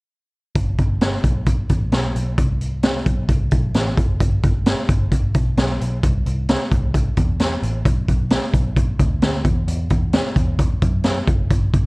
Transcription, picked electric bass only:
0.56 0.75 G1 medium
0.79 1.17 G1 medium
1.24 1.63 B1 medium
1.70 1.89 A1 medium
1.92 2.12 B1 medium
2.15 2.35 B1 medium
2.38 3.03 C2 medium
3.06 3.26 B1 medium
3.29 3.49 C2 medium
3.52 3.71 B1 medium
3.75 3.94 A1 medium
3.98 4.17 F#1 medium
4.20 4.40 G1 medium
4.44 4.73 G1 medium
4.89 5.35 G1 medium
5.35 5.54 B1 medium
5.57 5.77 B1 medium
5.81 6.00 B1 medium
6.04 6.23 C2 medium
6.26 6.55 C2 medium
6.72 7.10 C2 medium
7.17 7.56 E2 medium
7.62 7.82 A1 medium
7.85 8.05 B1 medium
8.09 8.38 B1 medium
8.54 8.92 B1 medium
9.00 9.19 D2 medium
9.22 9.42 D2 medium
9.45 9.64 E2 medium
9.68 9.87 E2 medium
9.90 10.20 E2 medium
10.36 10.75 E2 medium
10.82 11.21 F#2 medium
11.28 11.47 F#1 medium
11.50 11.70 G1 medium
11.74 11.86 G1 medium

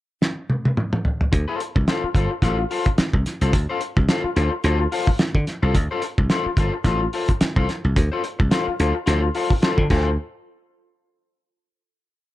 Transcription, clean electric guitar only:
1.32 muted clean electric guitar stroke soft
1.48 1.60 F4 medium
1.48 1.60 A4 medium
1.48 1.61 C5 medium
1.61 muted clean electric guitar stroke soft
1.76 muted clean electric guitar stroke soft
1.88 2.07 F4 medium
1.88 2.04 A4 medium
1.88 2.03 C5 medium
2.04 muted clean electric guitar stroke soft
2.16 2.31 F4 medium
2.16 2.31 A4 medium
2.16 2.30 C5 medium
2.31 muted clean electric guitar stroke soft
2.43 2.62 F4 medium
2.43 2.58 A4 medium
2.43 2.57 C5 medium
2.59 muted clean electric guitar stroke medium
2.71 2.86 F4 medium
2.71 2.86 A4 medium
2.71 2.86 C5 medium
2.87 muted clean electric guitar stroke medium
2.99 muted clean electric guitar stroke soft
3.14 muted clean electric guitar stroke soft
3.42 3.53 F4 medium
3.42 3.53 A4 medium
3.42 3.54 C5 medium
3.54 muted clean electric guitar stroke soft
3.69 3.80 F4 medium
3.69 3.80 A4 medium
3.69 3.81 C5 medium
3.81 muted clean electric guitar stroke soft
3.97 muted clean electric guitar stroke soft
4.09 4.28 F4 medium
4.09 4.24 A4 medium
4.09 4.23 C5 medium
4.24 muted clean electric guitar stroke medium
4.36 4.52 F4 medium
4.36 4.52 A4 medium
4.36 4.51 C5 medium
4.52 muted clean electric guitar stroke medium
4.64 4.84 F4 medium
4.64 4.80 A4 medium
4.64 4.79 C5 medium
4.80 muted clean electric guitar stroke medium
4.92 5.08 F4 medium
4.92 5.08 A4 medium
4.92 5.07 C5 medium
5.08 muted clean electric guitar stroke medium
5.20 muted clean electric guitar stroke soft
5.35 muted clean electric guitar stroke soft
5.62 5.74 F4 medium
5.62 5.74 A4 medium
5.62 5.75 C5 medium
5.75 muted clean electric guitar stroke soft
5.91 6.02 F4 medium
5.91 6.03 A4 medium
5.91 6.03 C5 medium
6.03 muted clean electric guitar stroke soft
6.19 muted clean electric guitar stroke soft
6.31 6.50 F4 medium
6.31 6.46 A4 medium
6.31 6.45 C5 medium
6.46 muted clean electric guitar stroke medium
6.58 6.74 F4 medium
6.58 6.74 A4 medium
6.58 6.73 C5 medium
6.74 muted clean electric guitar stroke medium
6.86 7.05 F4 medium
6.86 7.02 A4 medium
6.86 7.00 C5 medium
7.01 muted clean electric guitar stroke medium
7.14 7.29 F4 medium
7.14 7.29 A4 medium
7.14 7.28 C5 medium
7.29 muted clean electric guitar stroke medium
7.41 muted clean electric guitar stroke soft
7.57 7.68 F4 medium
7.57 7.69 A4 medium
7.57 7.69 C5 medium
7.69 muted clean electric guitar stroke soft
7.85 muted clean electric guitar stroke soft
7.97 muted clean electric guitar stroke soft
8.12 8.23 F4 medium
8.12 8.23 A4 medium
8.12 8.24 C5 medium
8.24 muted clean electric guitar stroke soft
8.39 muted clean electric guitar stroke soft
8.51 8.71 F4 medium
8.51 8.67 A4 medium
8.51 8.66 C5 medium
8.68 muted clean electric guitar stroke soft
8.80 8.96 F4 medium
8.80 8.95 A4 medium
8.80 8.94 C5 medium
8.95 muted clean electric guitar stroke medium
9.06 9.26 F4 medium
9.06 9.22 A4 loud
9.06 9.21 C5 loud
9.22 muted clean electric guitar stroke soft
9.35 9.51 F4 medium
9.35 9.50 A4 medium
9.35 9.48 C5 medium
9.50 muted clean electric guitar stroke medium
9.62 9.82 F4 medium
9.62 9.82 A4 medium
9.62 9.83 C5 medium
9.90 10.08 F4 medium
9.90 10.09 A4 medium
9.90 10.09 C5 medium

